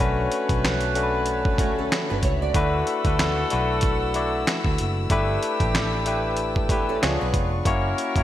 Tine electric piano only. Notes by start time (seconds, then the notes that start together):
0.00 A3 C#4 D4 F#4 B4
0.95 A3 C#4 D4 F#4 A4
1.03 B4
1.59 D3 A3 C#4 F#4 C#5
2.54 A3 D4 E4 F#4 B4
3.05 A3 D4 E4 F#4 B4
3.51 A3 D4 E4 F#4 B4
4.14 A3 D4 E4 F#4 D5
5.10 A3 D4 E4 G4 B4
6.06 A3 D4 E4 G4 B4
6.69 A3 D4 E4 G4 B4
7.02 B3 D4 F4 G#4 C#5
7.65 A#3 C#4 E4 F#4 C#5
8.16 A#3 C#4 E4 F#4 C#5